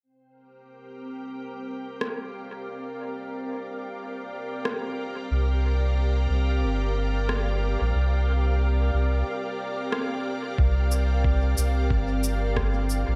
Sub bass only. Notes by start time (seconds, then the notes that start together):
5.31 C2
6.30 C2
6.63 G1
7.81 A#1
7.95 C2
8.94 C2
10.58 C2
11.58 C2
11.91 G1
13.08 A#1